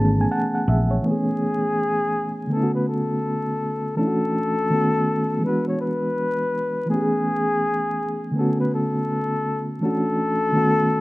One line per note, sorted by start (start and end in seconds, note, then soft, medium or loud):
0.00 0.25 G#1 medium
0.00 1.00 E3 medium
0.00 1.01 A3 medium
0.00 1.02 B3 medium
0.00 1.03 C#4 medium
0.00 1.04 G#4 medium
0.00 0.17 A5 medium
0.21 0.32 G#5 medium
0.31 0.54 F#5 medium
0.31 0.53 A5 medium
0.55 0.67 F#5 medium
0.68 0.98 A#1 medium
0.68 0.90 E5 medium
0.91 1.26 C#5 medium
1.02 2.46 E3 medium
1.02 2.47 A3 medium
1.02 2.47 G#4 loud
1.06 2.49 B3 medium
1.06 1.15 C4 soft
1.11 2.51 G#4 medium
1.15 2.53 C#4 soft
2.47 3.92 D3 medium
2.47 3.94 A3 medium
2.52 3.95 B3 medium
2.52 3.96 C#4 soft
2.52 2.72 A4 medium
2.57 2.62 E4 medium
2.63 4.00 F#4 medium
2.75 2.86 B4 medium
2.88 3.93 A4 medium
3.96 4.70 E3 medium
3.96 4.70 A3 medium
3.96 4.71 C#4 medium
3.96 4.71 D4 medium
3.96 5.39 A4 loud
4.01 4.07 E4 soft
4.07 4.73 F#4 medium
4.70 5.43 D#3 medium
4.70 5.44 A3 soft
4.70 5.43 B3 medium
4.70 5.45 C#4 medium
4.75 5.46 F#4 medium
5.39 6.84 E3 medium
5.39 6.86 G#3 medium
5.44 6.87 B3 medium
5.44 6.88 D4 soft
5.44 5.65 B4 medium
5.48 6.89 F#4 medium
5.68 5.79 C#5 medium
5.81 6.86 B4 medium
6.86 8.31 E3 medium
6.86 8.32 A3 medium
6.90 8.33 B3 medium
6.90 8.35 C#4 medium
6.90 8.32 G#4 loud
6.95 7.01 G4 medium
7.02 8.39 G#4 medium
8.31 9.77 D3 medium
8.31 9.78 A3 medium
8.36 9.79 B3 medium
8.36 9.80 C#4 medium
8.36 8.58 A4 medium
8.41 9.82 F#4 medium
8.60 8.72 B4 medium
8.74 9.67 A4 medium
9.80 10.55 E3 medium
9.80 10.52 A3 soft
9.80 10.55 C#4 medium
9.80 10.56 D4 medium
9.80 11.01 A4 loud
9.85 10.56 F#4 medium
10.52 11.01 D#3 medium
10.52 11.01 A3 medium
10.52 11.01 B3 medium
10.52 11.01 C#4 medium
10.57 11.01 F#4 medium